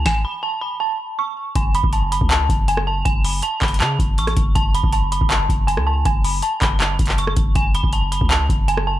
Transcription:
0.06 synth bell G#5, kick, snare
0.25 synth bell B5
0.43 synth bell A5
0.61 synth bell B5
0.80 synth bell A5
1.19 synth bell C#6
1.55 808-style bass F#1, synth bell G#5, kick, closed hi-hat
1.75 synth bell B5, closed hi-hat
1.84 808-style bass F#1, kick
1.93 synth bell A5, closed hi-hat
2.12 synth bell B5, closed hi-hat
2.21 808-style bass C#2, kick
2.30 synth bell A5, clap, closed hi-hat
2.49 808-style bass F#1, kick, closed hi-hat
2.68 synth bell G#5, closed hi-hat
2.77 cross-stick
2.87 synth bell A5
3.05 808-style bass F#1, synth bell G#5, kick, closed hi-hat
3.24 synth bell B5, open hi-hat
3.42 synth bell A5, closed hi-hat
3.61 808-style bass F#1, synth bell B5, kick, clap, closed hi-hat
3.68 closed hi-hat
3.74 closed hi-hat
3.80 808-style bass C#3, synth bell A5, clap, closed hi-hat
3.99 808-style bass F#1, kick, closed hi-hat
4.18 808-style bass A1, synth bell C#6, closed hi-hat
4.27 cross-stick, closed hi-hat
4.37 808-style bass F#1, kick, closed hi-hat
4.55 808-style bass F#1, synth bell A5, kick, closed hi-hat
4.75 synth bell B5, closed hi-hat
4.84 808-style bass F#1, kick
4.92 synth bell A5, closed hi-hat
5.12 synth bell B5, closed hi-hat
5.21 808-style bass F#1, kick
5.30 synth bell A5, clap, closed hi-hat
5.49 808-style bass F#1, kick, closed hi-hat
5.67 synth bell G#5, closed hi-hat
5.77 808-style bass C#2, cross-stick
5.87 synth bell A5
6.05 808-style bass F#1, synth bell G#5, kick, closed hi-hat
6.24 synth bell B5, open hi-hat
6.42 synth bell A5, closed hi-hat
6.61 808-style bass F#1, synth bell B5, kick, clap, closed hi-hat
6.80 synth bell A5, clap, closed hi-hat
6.99 808-style bass F#1, kick, closed hi-hat
7.06 clap, closed hi-hat
7.12 closed hi-hat
7.18 synth bell C#6, closed hi-hat
7.27 cross-stick
7.37 808-style bass F#1, kick, closed hi-hat
7.55 808-style bass F#1, synth bell G#5, kick, closed hi-hat
7.75 synth bell B5, closed hi-hat
7.84 808-style bass F#1, kick
7.93 synth bell A5, closed hi-hat
8.12 synth bell B5, closed hi-hat
8.21 808-style bass C#2, kick
8.30 synth bell A5, clap, closed hi-hat
8.49 808-style bass F#1, kick, closed hi-hat
8.68 synth bell G#5, closed hi-hat
8.77 cross-stick
8.87 synth bell A5

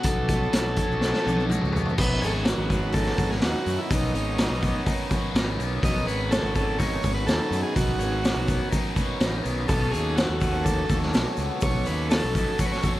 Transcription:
Already playing: harmonium F#3 C#4 A4, overdriven electric guitar F#4 A4
0.03 fingered electric bass B1, overdriven electric guitar B3, transistor combo organ A4, kick, closed hi-hat, shaker
0.28 overdriven electric guitar B3, kick, closed hi-hat, shaker
0.42 shaker
0.53 fingered electric bass B1, overdriven electric guitar F#4, snare, closed hi-hat, shaker
0.67 shaker
0.76 overdriven electric guitar C#5, kick, closed hi-hat, shaker
0.91 fingered electric bass B1, shaker
1.01 overdriven electric guitar A4, snare, shaker
1.13 snare, shaker
1.25 fingered electric bass B1, overdriven electric guitar B3, high tom, shaker
1.36 high tom, shaker
1.50 overdriven electric guitar F#4, mid tom, shaker
1.61 fingered electric bass C#2, mid tom, shaker
1.72 overdriven electric guitar B3, floor tom
1.76 shaker
1.85 floor tom, shaker
1.98 fingered electric bass B1, harmonium D#3 C#4 B4, overdriven electric guitar B3, transistor combo organ B4, kick, crash, shaker
2.22 fingered electric bass G#1, transistor combo organ G#4, overdriven electric guitar C#5, open hi-hat, shaker
2.26 transistor combo organ A4
2.33 transistor combo organ G#4
2.44 transistor combo organ F#4, overdriven electric guitar F#4, snare, open hi-hat, shaker
2.58 fingered electric bass G#1
2.70 overdriven electric guitar B3, transistor combo organ F#4, kick, open hi-hat, shaker
2.92 overdriven electric guitar D#4, transistor combo organ A4, kick, open hi-hat, shaker
3.06 snare
3.17 fingered electric bass G#1, overdriven electric guitar F#4, kick, open hi-hat, shaker
3.30 transistor combo organ G#4, snare
3.41 fingered electric bass D#2, overdriven electric guitar D#4, transistor combo organ F#4, snare, open hi-hat, shaker
3.66 fingered electric bass F#2, overdriven electric guitar B3, open hi-hat, shaker
3.78 transistor combo organ E4
3.90 fingered electric bass B1, overdriven electric guitar B3, transistor combo organ D#4, kick, open hi-hat, shaker
4.14 fingered electric bass G#1, overdriven electric guitar C#5, open hi-hat, shaker
4.38 overdriven electric guitar F#4, snare, open hi-hat, shaker
4.50 fingered electric bass B1
4.62 overdriven electric guitar B3, kick, open hi-hat, shaker
4.86 overdriven electric guitar D#4, kick, open hi-hat, shaker
5.10 overdriven electric guitar F#4, kick, open hi-hat, shaker
5.34 fingered electric bass G#1, overdriven electric guitar D#4, snare, open hi-hat, shaker
5.58 fingered electric bass B1, overdriven electric guitar B3, open hi-hat, shaker
5.82 fingered electric bass B1, overdriven electric guitar B3, transistor combo organ D#5, kick, open hi-hat, shaker
6.07 fingered electric bass G#1, transistor combo organ B4, overdriven electric guitar C#5, open hi-hat, shaker
6.30 overdriven electric guitar F#4, transistor combo organ A4, snare, open hi-hat, shaker
6.43 fingered electric bass G#1
6.54 overdriven electric guitar B3, transistor combo organ A4, kick, open hi-hat, shaker
6.78 overdriven electric guitar D#4, transistor combo organ C#5, kick, open hi-hat, shaker
7.02 fingered electric bass G#1, overdriven electric guitar F#4, kick, open hi-hat, shaker
7.14 transistor combo organ B4
7.26 fingered electric bass D#2, overdriven electric guitar D#4, transistor combo organ A4, snare, open hi-hat, shaker
7.51 fingered electric bass F#2, overdriven electric guitar B3, open hi-hat, shaker
7.63 transistor combo organ G#4
7.76 fingered electric bass B1, overdriven electric guitar B3, transistor combo organ F#4, kick, open hi-hat, shaker
8.00 fingered electric bass G#1, overdriven electric guitar C#5, open hi-hat, shaker
8.23 overdriven electric guitar F#4, snare, open hi-hat, shaker
8.36 fingered electric bass B1
8.48 overdriven electric guitar B3, kick, open hi-hat, shaker
8.71 overdriven electric guitar D#4, kick, open hi-hat, shaker
8.96 overdriven electric guitar F#4, kick, open hi-hat, shaker
9.20 fingered electric bass A1, overdriven electric guitar D#4, snare, open hi-hat, shaker
9.43 fingered electric bass B1, overdriven electric guitar B3, open hi-hat, shaker
9.67 fingered electric bass B1, harmonium F#3 A4, overdriven electric guitar B3, transistor combo organ A4, kick, open hi-hat, shaker
9.91 fingered electric bass D#2, transistor combo organ G#4, overdriven electric guitar C#5, open hi-hat, shaker
10.16 transistor combo organ F#4, overdriven electric guitar A4, snare, open hi-hat, shaker
10.29 fingered electric bass D#2
10.38 overdriven electric guitar B3, transistor combo organ F#4, kick, open hi-hat, shaker
10.64 overdriven electric guitar F#4, transistor combo organ A4, kick, open hi-hat, shaker
10.89 fingered electric bass D#2, overdriven electric guitar A4, kick, open hi-hat, shaker
11.03 snare
11.14 fingered electric bass B1, overdriven electric guitar F#4, snare, open hi-hat, shaker
11.37 fingered electric bass C#2, overdriven electric guitar B3, open hi-hat, shaker
11.61 fingered electric bass B1, overdriven electric guitar B3, transistor combo organ C#5, kick, open hi-hat, shaker
11.85 fingered electric bass D#2, transistor combo organ B4, overdriven electric guitar C#5, open hi-hat, shaker
12.10 overdriven electric guitar A4, transistor combo organ A4, snare, open hi-hat, shaker
12.24 fingered electric bass B1
12.33 overdriven electric guitar B3, transistor combo organ A4, kick, open hi-hat, shaker
12.59 overdriven electric guitar F#4, transistor combo organ C#5, kick, open hi-hat, shaker
12.65 transistor combo organ B4
12.72 transistor combo organ C#5, snare
12.82 overdriven electric guitar A4, kick, open hi-hat, shaker

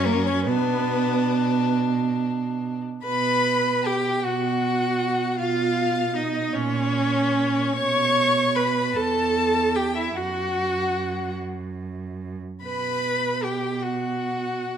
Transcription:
Already playing: cello F#2, violin C#4
0.06 viola A#3, violin A#4
0.26 viola C#4, violin C#5
0.46 cello B2, viola B3, violin D4 B4
3.04 cello B2, viola B4, violin B5
3.85 viola G4, violin G5
4.23 cello B2, viola F#4, violin F#5
5.38 cello B2, viola F4, violin F5
6.16 viola D#4, violin D#5
6.53 cello A#2, viola C#4, violin C#5
7.75 cello B2, viola C#5, violin C#6
8.55 viola B4, violin B5
8.95 cello E2, viola A4, violin A5
9.75 viola G4, violin G5
9.95 viola E4, violin E5
10.16 cello F#2, viola F#4, violin F#5
12.63 cello B2, viola B4, violin B5
13.43 viola G4, violin G5
13.82 viola F#4, violin F#5

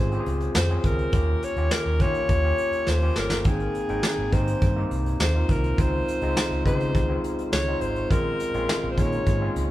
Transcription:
Already playing: fingered electric bass G#2, tine electric piano C4 C#4 F4 G4 G#4, alto saxophone C5
0.12 tine electric piano C4 C#4 F4 G4, closed hi-hat
0.19 tine electric piano G#4
0.26 fingered electric bass C#2, closed hi-hat
0.40 closed hi-hat
0.54 fingered electric bass F2, alto saxophone C5, snare, closed hi-hat
0.69 tine electric piano C4 C#4 F4 G#4, closed hi-hat
0.77 alto saxophone C5
0.84 fingered electric bass C#2, alto saxophone A#4, kick, closed hi-hat
0.98 closed hi-hat
1.12 fingered electric bass D#2, tine electric piano A#3 C#4 F4 G4, kick, closed hi-hat
1.42 alto saxophone C#5, closed hi-hat
1.56 fingered electric bass D#2, tine electric piano A#3 C#4 F4 G4, closed hi-hat
1.71 alto saxophone A#4, snare, closed hi-hat
1.86 fingered electric bass D#2, closed hi-hat
2.00 fingered electric bass D#3, tine electric piano A#3 C#4 F4 G4, alto saxophone C#5, kick, closed hi-hat
2.14 closed hi-hat
2.29 fingered electric bass D#2, kick, closed hi-hat
2.44 tine electric piano A#3 C#4 F4 G4
2.58 closed hi-hat
2.73 closed hi-hat
2.87 fingered electric bass D#2, alto saxophone C5, snare
3.02 tine electric piano A#3 C#4 F4 G4
3.16 fingered electric bass G1, alto saxophone A#4, snare
3.30 snare
3.41 fingered electric bass G#1, alto saxophone A#4, closed hi-hat
3.45 tine electric piano A#3 C4 D#4 G5, alto saxophone G#4, kick
3.60 closed hi-hat
3.75 closed hi-hat
3.89 fingered electric bass G#1, tine electric piano A#3 C4 D#4 G5, closed hi-hat
4.03 snare, closed hi-hat
4.18 fingered electric bass G#1
4.32 fingered electric bass G#2, tine electric piano A#3 C4 D#4 G4, alto saxophone C5, kick, closed hi-hat
4.47 closed hi-hat
4.61 fingered electric bass G2, kick, closed hi-hat
4.76 tine electric piano A#3 C4 D#4 G4
4.91 fingered electric bass C2, closed hi-hat
5.06 closed hi-hat
5.20 fingered electric bass D#2, alto saxophone C5, snare, closed hi-hat
5.35 tine electric piano A#3 C4 D#4 F4
5.49 fingered electric bass C2, alto saxophone A#4, kick, closed hi-hat
5.64 closed hi-hat
5.78 fingered electric bass C#2, tine electric piano G#3 C4 D#4 F4, alto saxophone C5, kick, closed hi-hat
6.08 closed hi-hat
6.21 fingered electric bass C#2, tine electric piano G#3 C4 D#4 F4, closed hi-hat
6.36 snare, closed hi-hat
6.51 fingered electric bass C#2, closed hi-hat
6.66 fingered electric bass C#3, tine electric piano G#3 C4 D#4 G4, alto saxophone C5, kick, closed hi-hat
6.80 closed hi-hat
6.94 fingered electric bass C#2, kick, closed hi-hat
7.09 tine electric piano G#3 C4 D#4 F4
7.24 closed hi-hat
7.39 closed hi-hat
7.52 fingered electric bass C#2, alto saxophone C#5, snare, closed hi-hat
7.68 tine electric piano G#3 C4 D#4 F4
7.81 fingered electric bass G#1, alto saxophone C5, closed hi-hat
7.96 closed hi-hat
8.10 fingered electric bass A#1, tine electric piano G#3 C4 C#4 F4, alto saxophone A#4, kick, closed hi-hat
8.40 closed hi-hat
8.54 fingered electric bass A#1, tine electric piano G#3 C4 C#4 F4, closed hi-hat
8.69 snare, closed hi-hat
8.84 fingered electric bass A#1
8.91 alto saxophone C5
8.97 fingered electric bass A#2, tine electric piano G#3 A#3 C#4 D#4, alto saxophone C#5, kick, closed hi-hat
9.12 closed hi-hat
9.26 fingered electric bass G#2, kick, closed hi-hat
9.41 tine electric piano G#3 C4 C#4 F4
9.56 fingered electric bass C#2, closed hi-hat

